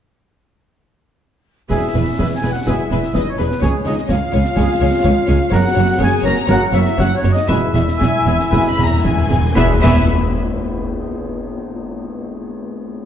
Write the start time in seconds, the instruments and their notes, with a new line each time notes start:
1.69 double bass section E1, cello section E2, trombone section B2 G#3, viola section G#3 G#4, french horn section E4, trumpet G#4, violin section B4 E5, oboe E5, flute section E5, concert bass drum, snare, crash
1.94 double bass section E1, cello section E2, viola section G#3 G#4, violin section B4
2.18 double bass section E1, cello section E2, viola section G#3 G#4, french horn section E4, violin section B4 E5, oboe E5, flute section E5, concert bass drum, snare
2.35 french horn section G#4, oboe G#5, violin section G#5, flute section G#5
2.43 double bass section E1, cello section E2, viola section G#3 G#4, violin section B4
2.50 french horn section F#4, violin section F#5, flute section F#5, oboe F#5
2.65 double bass section E1, cello section E2, trombone section B2 G#3, viola section G#3 G#4, french horn section E4, trumpet G#4, violin section B4, oboe E5, flute section E5, concert bass drum, snare
2.69 violin section E5
2.91 double bass section E1, cello section E2, viola section G#3 G#4, violin section B4, snare
3.03 snare
3.14 double bass section E1, cello section E2, viola section G#3 G#4, french horn section D#4, violin section B4 D#5, oboe D#5, flute section D#5, concert bass drum, snare
3.29 french horn section C#4, oboe C#5, flute section C#5, violin section C#5
3.39 double bass section E1, cello section E2, viola section G#3 G#4, violin section B4, snare
3.45 french horn section B3, flute section B4, violin section B4, oboe B4
3.51 snare
3.61 cello section C#2, double bass section C#2, trombone section C#3 G#3, viola section G#3 G#4, french horn section C#4, trumpet G#4, violin section C#5, flute section C#5, oboe C#5, concert bass drum, snare
3.84 double bass section C#2, cello section C#2, viola section G#3 G#4, french horn section D#4, violin section C#5 D#5, flute section D#5, oboe D#5, snare
3.98 snare
4.09 cello section C#2, double bass section C#2, viola section G#3 G#4, french horn section F4, violin section C#5 F5, flute section F5, oboe F5, concert bass drum, snare
4.32 double bass section C#2, cello section C#2, viola section G#3 G#4, violin section C#5
4.44 snare
4.56 double bass section C#2, cello section C#2, trombone section C#3 G#3, viola section G#3 G#4, trumpet G#4, violin section C#5, concert bass drum, snare
4.81 double bass section C#2, cello section C#2, viola section G#3 G#4, violin section C#5
5.03 double bass section C#2, cello section C#2, viola section G#3 G#4, violin section C#5, concert bass drum
5.26 cello section C#2, double bass section C#2, viola section G#3 G#4, violin section C#5, snare
5.50 double bass section F#1, cello section F#2, trombone section C#3 F#3, viola section A#3 F#4, french horn section F#4, trumpet A#4, violin section C#5, flute section F#5, concert bass drum, snare
5.54 oboe F#5, violin section F#5
5.74 double bass section F#1, cello section F#2, viola section A#3 F#4, violin section C#5
5.99 double bass section F#1, cello section F#2, viola section A#3 F#4, french horn section G#4, violin section C#5 G#5, flute section G#5, concert bass drum, snare
6.03 oboe G#5
6.22 double bass section F#1, cello section F#2, viola section A#3, french horn section A#4, violin section C#5 A#5, flute section A#5, oboe A#5
6.26 viola section F#4
6.46 double bass section F#1, cello section F#2, trombone section C#3 F#3, french horn section F#4, trumpet A#4, violin section C#5, flute section F#5, concert bass drum, snare
6.50 viola section A#3 F#4, oboe F#5, violin section F#5
6.72 double bass section F#1, cello section F#2, viola section A#3 F#4, french horn section E4, violin section C#5, flute section E5, oboe E5, snare
6.77 violin section E5
6.86 snare
6.97 double bass section F#1, cello section F#2, viola section A#3 F#4, french horn section F#4, violin section C#5 F#5, flute section F#5, oboe F#5, concert bass drum, snare
7.14 french horn section C#4, flute section C#5, oboe C#5, violin section C#5
7.23 double bass section F#1, cello section F#2, viola section A#3 F#4, violin section C#5, snare
7.32 french horn section D#4, oboe D#5, flute section D#5, violin section D#5
7.36 snare
7.48 double bass section E1, timpani E2, cello section E2, trombone section B2 G#3, viola section B3 G#4, french horn section E4, trumpet B4, violin section E5, oboe E5, flute section E5, concert bass drum, snare
7.58 timpani E2
7.66 timpani E2
7.74 double bass section E1, timpani E2, cello section E2, viola section B3 G#4, violin section E5, snare
7.81 timpani E2
7.88 timpani E2, snare
7.97 double bass section E1, timpani E2, viola section B3 G#4, violin section G#5, concert bass drum, snare
8.02 cello section E2
8.12 timpani E2
8.20 timpani E2
8.26 double bass section E1, cello section E2, timpani E2, viola section B3 G#4
8.36 timpani E2, snare
8.44 timpani E2
8.51 double bass section E1, timpani E2, cello section E2, trombone section B2 G#3, viola section B3 G#4, trumpet B4, violin section G#5, concert bass drum, snare
8.60 timpani E2
8.69 timpani E2, violin section B5
8.76 double bass section E1, timpani E2, cello section E2, viola section B3 G#4
8.85 timpani E2, violin section A#5
8.93 timpani E2
9.01 double bass section E1, timpani E2, viola section B3 G#4, violin section G#5, concert bass drum
9.06 cello section E2, timpani E2
9.18 timpani E2
9.25 timpani E2
9.29 double bass section E1, cello section E2, timpani E2, viola section B3 G#4, snare
9.42 timpani E2
9.55 double bass section E1, timpani E2, cello section E2, trombone section B2 G#3, viola section B3 G#4, french horn section E4, trumpet B4, violin section E5, flute section E5, oboe E5, concert bass drum, snare, tam-tam
9.81 double bass section E1, timpani E2, cello section E2, viola section B3 G#4, trumpet B4, flute section E5, violin section E5, oboe E5, concert bass drum, snare, crash, tam-tam